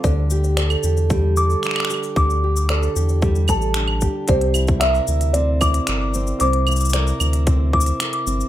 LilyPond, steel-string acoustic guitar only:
\new Staff \with { instrumentName = "Steel-string acoustic guitar" } { \time 4/4 \key c \mixolydian \tempo 4 = 113 d8 g'8 a'8 g'8 g8 a'8 d'8 g'8 | d8 g'8 a'8 g'8 g8 a'8 d'8 g'8 | c8 e'8 bes'8 e'8 c'8 e'8 bes'8 c'8 | c8 e'8 bes'8 e'8 c'8 e'8 bes'8 c'8 | }